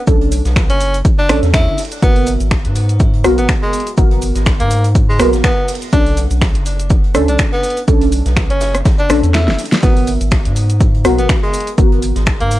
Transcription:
0.07 B1 C#4 D4 A4, kick, closed hi-hat, shaker
0.21 closed hi-hat
0.32 open hi-hat, shaker
0.45 B1, snare, closed hi-hat, shaker
0.56 finger snap, kick, snare, shaker
0.70 F#1 C#4, closed hi-hat
0.80 open hi-hat, shaker
0.94 closed hi-hat, shaker
1.05 kick, closed hi-hat, shaker
1.18 D4, snare
1.29 A1 C#4 D4 A4, finger snap, cross-stick, open hi-hat, shaker
1.43 E2, snare, closed hi-hat, shaker
1.54 E4, finger snap, kick, snare, closed hi-hat, shaker
1.67 F#1
1.78 snare, open hi-hat, shaker
1.85 closed hi-hat
1.92 closed hi-hat, shaker
2.02 G#1 B3 F#4 A#4, kick, closed hi-hat, shaker
2.16 open hi-hat
2.26 open hi-hat, shaker
2.40 G#1, closed hi-hat, shaker
2.51 finger snap, kick, snare, shaker
2.65 G#2, closed hi-hat
2.75 open hi-hat, shaker
2.89 closed hi-hat, shaker
3.00 kick, closed hi-hat, shaker
3.13 closed hi-hat
3.24 B1 B3 F#4 A#4, cross-stick, open hi-hat, shaker
3.38 G#1 B3, closed hi-hat, shaker
3.49 finger snap, kick, snare, closed hi-hat, shaker
3.62 G#3, closed hi-hat
3.73 open hi-hat, shaker
3.80 closed hi-hat
3.87 closed hi-hat, shaker
3.97 G#1 B3 F#4 A#4, kick, closed hi-hat, shaker
4.11 closed hi-hat
4.21 open hi-hat, shaker
4.35 G#1, snare, closed hi-hat, shaker
4.46 finger snap, kick, snare, shaker
4.60 G#2 A#3, closed hi-hat
4.71 open hi-hat, shaker
4.84 closed hi-hat, shaker
4.95 kick, closed hi-hat, shaker
5.09 G#3, snare
5.19 B1 B3 F#4 A#4, finger snap, cross-stick, open hi-hat, shaker
5.33 G#1, snare, closed hi-hat, shaker
5.44 B3, finger snap, kick, snare, closed hi-hat, shaker
5.68 snare, open hi-hat, shaker
5.75 closed hi-hat
5.82 closed hi-hat, shaker
5.93 B1 C#4 D4 A4, kick, closed hi-hat, shaker
6.06 open hi-hat
6.17 open hi-hat, shaker
6.31 B1, closed hi-hat, shaker
6.42 finger snap, kick, snare, shaker
6.55 F#1, closed hi-hat
6.66 open hi-hat, shaker
6.79 closed hi-hat, shaker
6.90 kick, closed hi-hat, shaker
7.04 closed hi-hat
7.15 D2 C#4 D4 A4, cross-stick, open hi-hat, shaker
7.28 B1 D4, closed hi-hat, shaker
7.38 finger snap, kick, snare, closed hi-hat, shaker
7.52 B3, closed hi-hat
7.63 open hi-hat, shaker
7.70 closed hi-hat
7.77 closed hi-hat, shaker
7.88 B1 C#4 D4 A4, kick, closed hi-hat, shaker
8.01 closed hi-hat, open hi-hat
8.12 open hi-hat, shaker
8.26 B1, snare, closed hi-hat, shaker
8.36 finger snap, kick, snare, shaker
8.50 F#1 C#4, closed hi-hat
8.61 snare, open hi-hat, shaker
8.75 cross-stick, closed hi-hat, shaker
8.85 kick, snare, closed hi-hat, shaker
8.98 D4, shaker
9.10 A1 C#4 D4 A4, finger snap, cross-stick, open hi-hat, shaker
9.23 E2, closed hi-hat, shaker
9.34 E4, finger snap, snare, closed hi-hat, shaker
9.48 F#1, snare
9.58 snare, open hi-hat, shaker
9.65 closed hi-hat
9.72 snare, closed hi-hat, shaker
9.83 G#1 B3 F#4 A#4, kick, closed hi-hat, shaker
9.97 open hi-hat
10.07 open hi-hat, shaker
10.21 G#1, closed hi-hat, shaker
10.31 finger snap, kick, snare, shaker
10.45 G#2, closed hi-hat
10.56 open hi-hat, shaker
10.70 closed hi-hat, shaker
10.80 kick, closed hi-hat, shaker
10.95 closed hi-hat
11.05 B1 B3 F#4 A#4, cross-stick, open hi-hat, shaker
11.18 G#1 B3, closed hi-hat, shaker
11.29 finger snap, kick, snare, closed hi-hat, shaker
11.43 G#3, closed hi-hat
11.54 open hi-hat, shaker
11.60 closed hi-hat
11.67 closed hi-hat, shaker
11.78 G#1 B3 F#4 A#4, kick, closed hi-hat, shaker
11.92 closed hi-hat
12.02 open hi-hat, shaker
12.16 G#1, snare, closed hi-hat, shaker
12.26 finger snap, kick, snare, shaker
12.40 G#2 A#3, closed hi-hat
12.51 open hi-hat, shaker

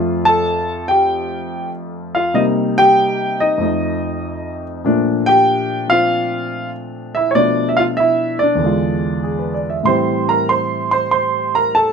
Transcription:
Already playing: F2 F3 A3 F4
0.25 A4 A5
0.88 G4 G5
2.15 F4 F5
2.34 C3 G3 A#3 D#4 D#5
2.78 G4 G5
3.40 D#4 D#5
3.58 F2 F3 A3
3.62 D#4
4.84 A#2 F3 A3 D4
5.26 G4 G5
5.88 F3 C4 F4 F5
7.15 E4 E5
7.31 B2 C#5
7.35 F3 A3 D4 D5
7.69 E5
7.77 F4 F5
7.97 E4 E5
8.39 D4 D5
8.55 E2 D3
8.63 G#3 F4
9.23 G#4
9.39 B4
9.54 D5
9.70 E5
9.83 A2 E3 G3 C5 C6
9.88 C4
10.29 A#4 A#5
10.49 C5 C6
10.91 C5 C6
11.11 C5 C6
11.55 A#4 A#5
11.75 A4 A5

